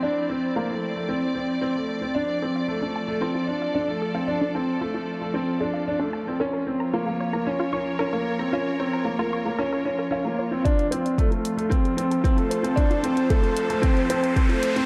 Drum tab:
HH |----------------|----------------|----------------|----------------|
BD |----------------|----------------|----------------|----------------|

HH |----------------|xxxxxxxxxxxxxxxx|xxxxxxxxxxxxxxxx|
BD |----------------|o---o---o---o---|o---o---o---o---|